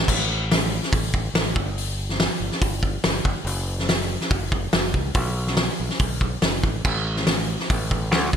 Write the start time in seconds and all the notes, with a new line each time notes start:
0.08 A1, kick, crash
0.51 snare, open hi-hat
0.83 snare
0.93 A1, kick, open hi-hat
1.14 kick
1.34 A1, snare, open hi-hat
1.56 G1, kick
1.78 open hi-hat
2.09 snare
2.20 snare, open hi-hat
2.40 G1
2.52 snare
2.61 G1, kick, open hi-hat
2.83 kick
3.04 G1, snare, open hi-hat
3.24 F#1, kick
3.45 F#1, open hi-hat
3.79 snare
3.89 snare, open hi-hat
4.21 snare
4.31 F#1, kick, open hi-hat
4.52 kick
4.73 F#1, snare, open hi-hat
4.94 C#2, kick
5.14 B1, kick, open hi-hat
5.47 snare
5.57 snare, open hi-hat
5.80 B1
5.90 snare
5.99 B1, kick, open hi-hat
6.21 kick
6.42 F#1, snare, open hi-hat
6.63 A1, kick
6.85 A1, kick, crash
7.16 snare
7.27 snare, open hi-hat
7.60 snare
7.70 A1, kick, open hi-hat
7.91 kick
8.11 D2, snare, open hi-hat
8.33 G1, kick